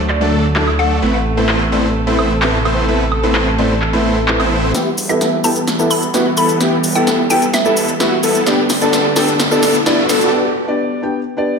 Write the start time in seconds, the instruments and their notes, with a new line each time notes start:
Already playing: detuned saw bass D2, string section D3 F#3 A3
0.09 synth pluck D5, clap
0.20 felt piano F#3 A3 D4 A4, supersaw synth A3 D4 A4
0.55 felt piano F#3 A3 D4 A4, supersaw synth A3 D4 E4, clap
0.67 high woodblock
0.79 supersaw synth A3 D4 A4, synth pluck F#5
1.02 detuned saw bass A1, string section C3 A4, felt piano A3 C4 E4 B4, supersaw synth A3 B3 C4 E4 B4
1.37 felt piano A3 C4 E4 B4, supersaw synth A3 B3 C4 E4 C5
1.49 clap
1.71 felt piano A3 C4 E4 D5, supersaw synth A3 B3 C4 E4 C5
2.06 felt piano A3 C4 E4 B4, supersaw synth A3 B3 C4 E4 C5
2.19 high woodblock
2.41 felt piano A3 C4 E4 B4, supersaw synth A3 B3 C4 E4 A4, clap
2.65 supersaw synth A3 B3 C4 E4 C5, high woodblock
2.88 felt piano A3 C4 E4 B4, supersaw synth A3 B3 C4 E4 B4
3.12 high woodblock
3.23 felt piano A3 C4 E4 B4, supersaw synth A3 B3 C4 E4 C5
3.35 clap
3.58 felt piano A3 C4 E4 D5, supersaw synth A3 B3 C4 E4 C5
3.82 clap, swell
3.93 felt piano A3 C4 E4 B4, supersaw synth A3 B3 C4 E4 C5
4.27 felt piano A3 C4 E4 B4, clap
4.40 supersaw synth A3 B3 C4 E4 C5, high woodblock
4.74 detuned saw bass E1, string section E3 G3 B3, felt piano B3 E4 G4 E5, supersaw synth B3 E4 G4, analog synth lead G4, snare, closed hi-hat, riser, shaker
4.98 detuned saw bass E1, open hi-hat, shaker
5.09 felt piano B3 E4 G4 E5, supersaw synth B3 E4 A4, analog synth lead A4, synth pluck E5, closed hi-hat, shaker
5.21 detuned saw bass E1, snare, closed hi-hat, shaker
5.33 detuned saw bass E1
5.44 detuned saw bass E1, felt piano B3 E4 G4 G5, supersaw synth B3 E4 A4, analog synth lead A4, synth pluck A5, open hi-hat, shaker
5.56 closed hi-hat, shaker
5.68 detuned saw bass E1, snare, closed hi-hat, shaker
5.79 felt piano B3 E4 G4 E5, supersaw synth B3 E4 A4, analog synth lead A4, shaker
5.91 detuned saw bass E1, synth pluck B5, open hi-hat, shaker
6.02 closed hi-hat, shaker
6.14 detuned saw bass E1, felt piano B3 E4 G4 E5, supersaw synth B3 E4 F#4, analog synth lead F#4, snare, closed hi-hat, shaker
6.37 detuned saw bass E1, supersaw synth B3 E4 A4, analog synth lead A4, synth pluck B5, open hi-hat, shaker
6.49 closed hi-hat, shaker
6.60 detuned saw bass E1, felt piano B3 E4 G4 E5, supersaw synth B3 E4 G4, analog synth lead G4, snare, closed hi-hat, shaker
6.84 detuned saw bass E1, open hi-hat, shaker
6.95 felt piano B3 E4 G4 E5, supersaw synth B3 E4 A4, analog synth lead A4, synth pluck G5, closed hi-hat, shaker
7.07 detuned saw bass E1, snare, closed hi-hat, shaker
7.19 detuned saw bass E1
7.30 detuned saw bass E1, felt piano B3 E4 G4 G5, supersaw synth B3 E4 A4, analog synth lead A4, synth pluck G5, open hi-hat, shaker
7.42 closed hi-hat, shaker
7.54 detuned saw bass E1, synth pluck E5, snare, closed hi-hat, shaker
7.65 felt piano B3 E4 G4 E5, supersaw synth B3 E4 A4, analog synth lead A4, shaker
7.77 detuned saw bass E1, open hi-hat, shaker
7.88 closed hi-hat, shaker
7.99 felt piano B3 E4 G4 E5, supersaw synth B3 E4 F#4, analog synth lead F#4, snare, closed hi-hat, shaker
8.23 detuned saw bass E1, supersaw synth B3 E4 A4, analog synth lead A4, open hi-hat, shaker
8.35 closed hi-hat, shaker
8.46 detuned saw bass G1, string section D3, felt piano B3 D4 G4 D5, supersaw synth B3 D4 G4, analog synth lead G4, snare, closed hi-hat, shaker
8.70 detuned saw bass G1, snare, open hi-hat, shaker
8.81 felt piano B3 D4 G4 D5, supersaw synth B3 D4 A4, analog synth lead A4, closed hi-hat, shaker
8.93 detuned saw bass G1, snare, closed hi-hat, shaker
9.05 detuned saw bass G1
9.16 detuned saw bass G1, felt piano B3 D4 G4 G5, supersaw synth B3 D4 A4, analog synth lead A4, snare, open hi-hat, shaker
9.28 closed hi-hat, shaker
9.39 detuned saw bass G1, snare, closed hi-hat, shaker
9.51 felt piano B3 D4 G4 D5, supersaw synth B3 D4 A4, analog synth lead A4, shaker
9.63 detuned saw bass G1, snare, open hi-hat, shaker
9.75 closed hi-hat, shaker
9.85 detuned saw bass G1, felt piano B3 D4 G4 D5, supersaw synth B3 D4 E4, analog synth lead E4, snare, closed hi-hat, shaker
10.09 detuned saw bass G1, supersaw synth B3 D4 A4, analog synth lead A4, snare, open hi-hat, shaker
10.21 closed hi-hat, shaker
10.32 felt piano B3 D4 G4 D5
10.67 felt piano B3 D4 G4 D5
11.02 felt piano B3 D4 G4 G5
11.37 felt piano B3 D4 G4 D5